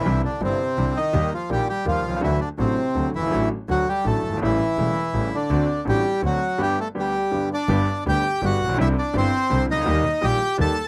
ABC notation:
X:1
M:3/4
L:1/16
Q:1/4=165
K:Dmix
V:1 name="Bandoneon"
[E,E]2 [D,D]2 [C,C]6 [_E,_E]2- | [_E,_E]2 [=F,=F]2 [G,G]2 [G,G]2 [F,F]4 | [E,E]2 [D,D]2 [C,C]6 [E,E]2- | [E,E]2 z2 [F,F]2 [G,G]2 [A,A]4 |
[E,E]8- [E,E]2 [D,D]2- | [D,D]4 [G,G]4 [F,F]4 | [G,G]2 [A,A]2 [G,G]6 [Dd]2- | [Dd]4 [Gg]4 [Ff]4 |
[Ee]2 [Dd]2 [Cc]6 [_E_e]2- | [_E_e]4 [Gg]4 [Aa]3 z |]
V:2 name="Grand piano" clef=bass
[C,,C,D,G,CE]2 z2 [G,,,G,,D,G,CE]2 z2 [C,,C,D,G,CE]2 z2 | [_E,,_E,G,_B,G]2 z2 [_B,,,_B,,E,G,B,G]2 z2 [E,,E,G,B,G]2 z/2 =B,,,/2 C,,/2 ^C,,/2 | [D,,D,F,A,F]2 z2 [A,,,A,,D,F,A,F]2 z2 [D,,D,F,A,F]2 z/2 F,,,/2 G,,,/2 _A,,,/2 | [A,,,A,,D,F,A,F]2 z2 [D,,D,F,A,F]2 z2 [A,,,A,,D,F,A,F]2 z/2 F,,,/2 G,,,/2 _A,,,/2 |
[A,,,A,,^C,G,A,E]2 z2 [E,,,E,,C,G,A,E]2 z2 [A,,,A,,C,G,A,E]2 z2 | [D,,D,A,CF]2 z2 [A,,,A,,D,A,CF]2 z2 [D,,D,A,CF]2 z2 | [G,,,G,,D,G,B,G]2 z2 [D,,D,G,B,G]2 z2 [G,,,G,,D,G,B,G]2 z2 | [G,,,G,,D,G,B,G]2 z2 [D,,D,G,B,G]2 z2 [G,,,G,,D,G,B,G]2 z/2 A,,,/2 _B,,,/2 =B,,,/2 |
[C,,C,D,G,CE]2 z2 [G,,,G,,D,G,CE]2 z2 [C,,C,D,G,CE]2 z/2 C,,/2 ^C,,/2 D,,/2 | [_E,,_E,G,_B,G]2 z2 [_B,,,_B,,E,G,B,G]2 z2 [E,,E,G,B,G]2 z2 |]
V:3 name="Double bass" clef=bass
C,,2 z2 G,,,2 z2 C,,2 z2 | _E,,2 z2 _B,,,2 z2 E,,2 C,,2 | D,,2 z2 A,,,2 z2 D,,2 G,,,2 | A,,,2 z2 D,,2 z2 A,,,2 G,,,2 |
A,,,2 z2 E,,,2 z2 A,,,2 z2 | D,,2 z2 A,,,2 z2 D,,2 z2 | z12 | G,,,2 z2 D,,2 z2 G,,,2 _B,,,2 |
C,,2 z2 G,,,2 z2 C,,2 ^C,,2 | _E,,2 z2 _B,,,2 z2 E,,2 z2 |]